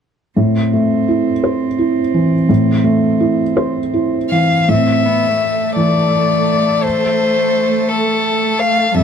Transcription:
0, 0, Header, 1, 5, 480
1, 0, Start_track
1, 0, Key_signature, 0, "minor"
1, 0, Tempo, 709220
1, 249, Time_signature, 6, 3, 24, 8
1, 2165, Tempo, 737101
1, 3605, Tempo, 706714
1, 6066, End_track
2, 0, Start_track
2, 0, Title_t, "Violin"
2, 0, Program_c, 0, 40
2, 2884, Note_on_c, 0, 77, 59
2, 3134, Note_on_c, 0, 76, 50
2, 3144, Note_off_c, 0, 77, 0
2, 3840, Note_off_c, 0, 76, 0
2, 3844, Note_on_c, 0, 74, 58
2, 4574, Note_on_c, 0, 72, 69
2, 4584, Note_off_c, 0, 74, 0
2, 5287, Note_on_c, 0, 69, 58
2, 5297, Note_off_c, 0, 72, 0
2, 5766, Note_on_c, 0, 77, 64
2, 5776, Note_off_c, 0, 69, 0
2, 6005, Note_on_c, 0, 76, 68
2, 6015, Note_off_c, 0, 77, 0
2, 6066, Note_off_c, 0, 76, 0
2, 6066, End_track
3, 0, Start_track
3, 0, Title_t, "Ambient pad"
3, 0, Program_c, 1, 92
3, 3137, Note_on_c, 1, 57, 54
3, 3137, Note_on_c, 1, 69, 52
3, 5979, Note_off_c, 1, 57, 0
3, 5979, Note_off_c, 1, 69, 0
3, 6006, Note_on_c, 1, 57, 57
3, 6008, Note_on_c, 1, 65, 58
3, 6010, Note_on_c, 1, 69, 59
3, 6066, Note_off_c, 1, 57, 0
3, 6066, Note_off_c, 1, 65, 0
3, 6066, Note_off_c, 1, 69, 0
3, 6066, End_track
4, 0, Start_track
4, 0, Title_t, "Cello"
4, 0, Program_c, 2, 42
4, 263, Note_on_c, 2, 60, 36
4, 2981, Note_off_c, 2, 60, 0
4, 3132, Note_on_c, 2, 60, 40
4, 3369, Note_on_c, 2, 59, 46
4, 3379, Note_off_c, 2, 60, 0
4, 3604, Note_off_c, 2, 59, 0
4, 3607, Note_on_c, 2, 57, 42
4, 5980, Note_off_c, 2, 57, 0
4, 6009, Note_on_c, 2, 55, 50
4, 6066, Note_off_c, 2, 55, 0
4, 6066, End_track
5, 0, Start_track
5, 0, Title_t, "Felt piano"
5, 0, Program_c, 3, 0
5, 247, Note_on_c, 3, 45, 38
5, 363, Control_c, 3, 64, 127
5, 495, Note_on_c, 3, 57, 31
5, 733, Note_on_c, 3, 64, 32
5, 879, Note_off_c, 3, 57, 0
5, 972, Note_on_c, 3, 72, 38
5, 1116, Note_off_c, 3, 64, 0
5, 1208, Note_on_c, 3, 64, 35
5, 1352, Note_off_c, 3, 72, 0
5, 1449, Note_on_c, 3, 52, 37
5, 1588, Note_off_c, 3, 64, 0
5, 1655, Note_off_c, 3, 45, 0
5, 1686, Note_on_c, 3, 45, 48
5, 1695, Control_c, 3, 64, 0
5, 1823, Control_c, 3, 64, 127
5, 1827, Note_off_c, 3, 52, 0
5, 1922, Note_on_c, 3, 57, 38
5, 2167, Note_on_c, 3, 64, 43
5, 2307, Note_off_c, 3, 57, 0
5, 2405, Note_on_c, 3, 72, 47
5, 2546, Note_off_c, 3, 64, 0
5, 2645, Note_on_c, 3, 64, 39
5, 2792, Note_off_c, 3, 72, 0
5, 2893, Note_on_c, 3, 52, 32
5, 3041, Note_off_c, 3, 64, 0
5, 3110, Note_off_c, 3, 45, 0
5, 3132, Note_on_c, 3, 45, 36
5, 3136, Note_off_c, 3, 52, 0
5, 3148, Control_c, 3, 64, 0
5, 3238, Control_c, 3, 64, 127
5, 3843, Note_on_c, 3, 52, 35
5, 4545, Note_off_c, 3, 45, 0
5, 4587, Control_c, 3, 64, 0
5, 4697, Control_c, 3, 64, 127
5, 6003, Note_on_c, 3, 41, 48
5, 6005, Note_off_c, 3, 52, 0
5, 6019, Control_c, 3, 64, 0
5, 6066, Note_off_c, 3, 41, 0
5, 6066, End_track
0, 0, End_of_file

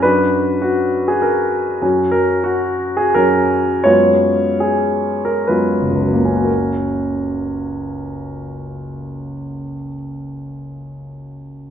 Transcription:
0, 0, Header, 1, 2, 480
1, 0, Start_track
1, 0, Key_signature, 6, "major"
1, 0, Tempo, 598802
1, 43, Time_signature, 3, 2, 24, 8
1, 1962, Tempo, 703400
1, 2922, Tempo, 758534
1, 3402, Tempo, 881057
1, 3882, Tempo, 969305
1, 4362, Tempo, 853485
1, 4842, Tempo, 900901
1, 6282, Tempo, 864553
1, 7218, End_track
2, 0, Start_track
2, 0, Title_t, "Grand piano"
2, 0, Program_c, 0, 0
2, 0, Control_c, 0, 64, 127
2, 20, Note_on_c, 0, 71, 68
2, 29, Note_on_c, 0, 42, 41
2, 30, Note_on_c, 0, 54, 34
2, 34, Note_on_c, 0, 62, 34
2, 39, Note_on_c, 0, 66, 31
2, 59, Control_c, 0, 64, 0
2, 172, Control_c, 0, 64, 127
2, 483, Note_off_c, 0, 66, 0
2, 495, Note_on_c, 0, 66, 54
2, 507, Note_off_c, 0, 71, 0
2, 857, Note_off_c, 0, 66, 0
2, 864, Note_on_c, 0, 68, 55
2, 977, Note_on_c, 0, 70, 55
2, 986, Note_off_c, 0, 68, 0
2, 1426, Note_off_c, 0, 42, 0
2, 1426, Note_off_c, 0, 54, 0
2, 1428, Note_off_c, 0, 62, 0
2, 1456, Note_on_c, 0, 42, 43
2, 1459, Note_off_c, 0, 70, 0
2, 1459, Note_on_c, 0, 54, 34
2, 1461, Note_on_c, 0, 61, 34
2, 1466, Note_on_c, 0, 66, 35
2, 1481, Control_c, 0, 64, 0
2, 1614, Control_c, 0, 64, 127
2, 1695, Note_on_c, 0, 70, 58
2, 1942, Note_off_c, 0, 66, 0
2, 1954, Note_on_c, 0, 66, 57
2, 1958, Note_off_c, 0, 70, 0
2, 2316, Note_off_c, 0, 66, 0
2, 2317, Note_on_c, 0, 68, 59
2, 2409, Note_off_c, 0, 42, 0
2, 2411, Note_off_c, 0, 54, 0
2, 2412, Note_off_c, 0, 61, 0
2, 2437, Note_on_c, 0, 70, 65
2, 2438, Note_off_c, 0, 68, 0
2, 2442, Note_on_c, 0, 42, 41
2, 2444, Note_on_c, 0, 54, 34
2, 2448, Note_on_c, 0, 66, 34
2, 2449, Note_on_c, 0, 61, 33
2, 2910, Note_off_c, 0, 42, 0
2, 2910, Note_on_c, 0, 73, 70
2, 2911, Note_off_c, 0, 54, 0
2, 2913, Note_off_c, 0, 61, 0
2, 2913, Note_off_c, 0, 66, 0
2, 2920, Note_on_c, 0, 42, 43
2, 2921, Note_on_c, 0, 56, 32
2, 2922, Note_off_c, 0, 70, 0
2, 2923, Note_on_c, 0, 59, 34
2, 2923, Note_on_c, 0, 65, 34
2, 2935, Control_c, 0, 64, 0
2, 3078, Control_c, 0, 64, 127
2, 3395, Note_on_c, 0, 68, 56
2, 3397, Note_off_c, 0, 73, 0
2, 3748, Note_on_c, 0, 70, 53
2, 3752, Note_off_c, 0, 68, 0
2, 3860, Note_off_c, 0, 42, 0
2, 3860, Note_off_c, 0, 56, 0
2, 3861, Note_off_c, 0, 59, 0
2, 3861, Note_off_c, 0, 65, 0
2, 3870, Note_on_c, 0, 71, 50
2, 3877, Note_on_c, 0, 42, 36
2, 3879, Note_off_c, 0, 70, 0
2, 3882, Note_on_c, 0, 56, 28
2, 3882, Note_on_c, 0, 59, 28
2, 3884, Note_on_c, 0, 65, 30
2, 4039, Note_on_c, 0, 30, 33
2, 4089, Note_on_c, 0, 37, 27
2, 4146, Note_on_c, 0, 54, 28
2, 4199, Note_on_c, 0, 58, 29
2, 4257, Note_on_c, 0, 61, 30
2, 4310, Note_on_c, 0, 66, 29
2, 4346, Note_off_c, 0, 42, 0
2, 4348, Note_off_c, 0, 56, 0
2, 4348, Note_off_c, 0, 59, 0
2, 4349, Note_off_c, 0, 65, 0
2, 4354, Note_on_c, 0, 70, 36
2, 4357, Note_off_c, 0, 71, 0
2, 4379, Control_c, 0, 64, 0
2, 4496, Control_c, 0, 64, 127
2, 5903, Note_off_c, 0, 30, 0
2, 5957, Note_off_c, 0, 37, 0
2, 6019, Note_off_c, 0, 54, 0
2, 6075, Note_off_c, 0, 58, 0
2, 6137, Note_off_c, 0, 61, 0
2, 6195, Note_off_c, 0, 66, 0
2, 6242, Note_off_c, 0, 70, 0
2, 7218, End_track
0, 0, End_of_file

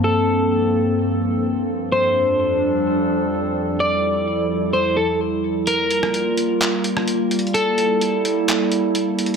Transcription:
0, 0, Header, 1, 4, 480
1, 0, Start_track
1, 0, Tempo, 468750
1, 47, Time_signature, 4, 2, 24, 8
1, 9591, End_track
2, 0, Start_track
2, 0, Title_t, "Clean electric guitar"
2, 0, Program_c, 0, 27
2, 43, Note_on_c, 0, 69, 108
2, 1924, Note_off_c, 0, 69, 0
2, 1969, Note_on_c, 0, 72, 104
2, 3847, Note_off_c, 0, 72, 0
2, 3892, Note_on_c, 0, 74, 107
2, 4809, Note_off_c, 0, 74, 0
2, 4847, Note_on_c, 0, 72, 86
2, 5075, Note_off_c, 0, 72, 0
2, 5085, Note_on_c, 0, 69, 68
2, 5314, Note_off_c, 0, 69, 0
2, 5810, Note_on_c, 0, 70, 112
2, 7688, Note_off_c, 0, 70, 0
2, 7724, Note_on_c, 0, 69, 114
2, 9591, Note_off_c, 0, 69, 0
2, 9591, End_track
3, 0, Start_track
3, 0, Title_t, "Ambient pad"
3, 0, Program_c, 1, 92
3, 0, Note_on_c, 1, 43, 76
3, 0, Note_on_c, 1, 53, 69
3, 0, Note_on_c, 1, 58, 70
3, 0, Note_on_c, 1, 60, 73
3, 47, Note_on_c, 1, 69, 88
3, 1926, Note_off_c, 1, 53, 0
3, 1928, Note_off_c, 1, 58, 0
3, 1928, Note_off_c, 1, 60, 0
3, 1929, Note_off_c, 1, 43, 0
3, 1948, Note_off_c, 1, 69, 0
3, 1968, Note_on_c, 1, 41, 79
3, 1968, Note_on_c, 1, 53, 74
3, 1968, Note_on_c, 1, 55, 71
3, 1968, Note_on_c, 1, 69, 89
3, 1969, Note_on_c, 1, 62, 74
3, 3869, Note_off_c, 1, 62, 0
3, 3887, Note_on_c, 1, 64, 69
3, 5769, Note_off_c, 1, 41, 0
3, 5769, Note_off_c, 1, 53, 0
3, 5769, Note_off_c, 1, 55, 0
3, 5769, Note_off_c, 1, 69, 0
3, 5788, Note_off_c, 1, 64, 0
3, 5806, Note_on_c, 1, 55, 76
3, 5806, Note_on_c, 1, 65, 85
3, 5807, Note_on_c, 1, 58, 74
3, 7707, Note_off_c, 1, 65, 0
3, 7727, Note_on_c, 1, 64, 84
3, 9591, Note_off_c, 1, 55, 0
3, 9591, Note_off_c, 1, 58, 0
3, 9591, Note_off_c, 1, 64, 0
3, 9591, End_track
4, 0, Start_track
4, 0, Title_t, "Drums"
4, 5806, Note_on_c, 9, 42, 81
4, 5909, Note_off_c, 9, 42, 0
4, 6047, Note_on_c, 9, 42, 68
4, 6150, Note_off_c, 9, 42, 0
4, 6174, Note_on_c, 9, 37, 87
4, 6277, Note_off_c, 9, 37, 0
4, 6287, Note_on_c, 9, 42, 73
4, 6390, Note_off_c, 9, 42, 0
4, 6528, Note_on_c, 9, 42, 69
4, 6630, Note_off_c, 9, 42, 0
4, 6766, Note_on_c, 9, 42, 71
4, 6775, Note_on_c, 9, 39, 95
4, 6868, Note_off_c, 9, 42, 0
4, 6877, Note_off_c, 9, 39, 0
4, 7008, Note_on_c, 9, 42, 74
4, 7110, Note_off_c, 9, 42, 0
4, 7134, Note_on_c, 9, 37, 95
4, 7236, Note_off_c, 9, 37, 0
4, 7245, Note_on_c, 9, 42, 79
4, 7348, Note_off_c, 9, 42, 0
4, 7487, Note_on_c, 9, 42, 69
4, 7566, Note_off_c, 9, 42, 0
4, 7566, Note_on_c, 9, 42, 55
4, 7647, Note_off_c, 9, 42, 0
4, 7647, Note_on_c, 9, 42, 38
4, 7727, Note_off_c, 9, 42, 0
4, 7727, Note_on_c, 9, 42, 82
4, 7829, Note_off_c, 9, 42, 0
4, 7966, Note_on_c, 9, 42, 70
4, 8069, Note_off_c, 9, 42, 0
4, 8207, Note_on_c, 9, 42, 79
4, 8309, Note_off_c, 9, 42, 0
4, 8448, Note_on_c, 9, 42, 70
4, 8550, Note_off_c, 9, 42, 0
4, 8685, Note_on_c, 9, 42, 76
4, 8694, Note_on_c, 9, 39, 102
4, 8787, Note_off_c, 9, 42, 0
4, 8796, Note_off_c, 9, 39, 0
4, 8925, Note_on_c, 9, 42, 69
4, 9027, Note_off_c, 9, 42, 0
4, 9164, Note_on_c, 9, 42, 83
4, 9266, Note_off_c, 9, 42, 0
4, 9406, Note_on_c, 9, 42, 69
4, 9486, Note_off_c, 9, 42, 0
4, 9486, Note_on_c, 9, 42, 56
4, 9588, Note_off_c, 9, 42, 0
4, 9591, End_track
0, 0, End_of_file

